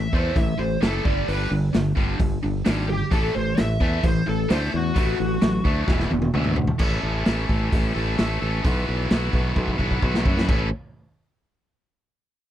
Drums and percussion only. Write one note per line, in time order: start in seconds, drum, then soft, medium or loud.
0.13 kick medium
0.36 kick loud
0.36 open hi-hat medium
0.82 snare loud
0.82 open hi-hat medium
1.05 kick loud
1.28 open hi-hat medium
1.74 snare loud
1.74 open hi-hat soft
1.97 kick medium
2.19 kick loud
2.19 open hi-hat medium
2.65 snare loud
2.65 open hi-hat medium
3.11 kick loud
3.11 open hi-hat medium
3.57 snare loud
3.57 open hi-hat medium
3.81 kick medium
4.03 kick loud
4.03 open hi-hat medium
4.50 snare loud
4.50 open hi-hat medium
4.96 kick loud
4.96 open hi-hat medium
5.41 snare loud
5.41 open hi-hat medium
5.65 kick medium
5.88 kick loud
5.88 snare medium
6.00 snare medium
6.11 high tom medium
6.22 high tom medium
6.34 mid tom medium
6.44 mid tom medium
6.56 floor tom medium
6.67 floor tom medium
6.79 kick loud
6.79 crash loud
7.26 snare loud
7.26 open hi-hat medium
7.49 kick medium
7.72 kick loud
7.72 open hi-hat medium
8.18 snare loud
8.18 open hi-hat medium
8.65 kick loud
8.65 open hi-hat medium
9.10 snare loud
9.10 open hi-hat medium
9.33 kick medium
9.56 kick loud
9.68 kick medium
9.79 kick medium
9.91 kick medium
10.03 kick medium
10.14 snare medium
10.26 kick loud
10.37 snare medium
10.49 kick loud
10.49 crash medium